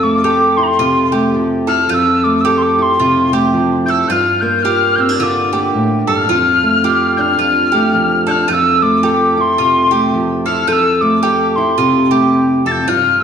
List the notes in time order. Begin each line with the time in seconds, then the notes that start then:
Already playing: F2 F4 A4
0.03 A3 D6
0.24 G4 A4
0.57 E4 C6
0.63 A#5 C6
0.79 C3 F4
1.12 A3 G4
1.35 F3
1.67 E4 A4 F6
1.89 F2 F4 A4 G6
1.94 E6
2.24 A3 D6
2.41 G4 E6
2.45 A4 D6
2.58 C6
2.62 D6
2.78 E4 C6 D6
2.99 C3 F4
3.32 A3 G4
3.54 F3
3.86 E4 A4 G6
3.90 E6
4.08 G2 F4 G6
4.12 F6
4.41 A#3 G6
4.62 F4 G4 F6
4.96 C4 G6
5.00 E6
5.09 D4
5.19 D3 F4 E6
5.23 D6
5.53 A#3 G4
5.75 A2
6.07 G2 A4 F6
6.29 F2 F4
6.63 A3
6.84 F4 G4
7.17 D4 F6 G6
7.39 F2 F4
7.72 A3 G4
7.94 F3
8.27 D4 A4 G6
8.31 F6
8.48 F2 F4 A4 G6
8.53 E6
8.82 A3 D6
9.03 G4 A4
9.36 E4 D6
9.41 C6
9.58 C3 F4
9.91 A3 G4
10.14 F3
10.46 E4 A4 F6
10.68 F2 F4 A4 G6
10.72 E6
11.01 A3 D6
11.23 G4 A4
11.56 E4 C6
11.78 C3 F4
12.11 A3 G4
12.65 F2 A4 A6
12.71 G6
12.88 G2 F4 F6
13.20 E6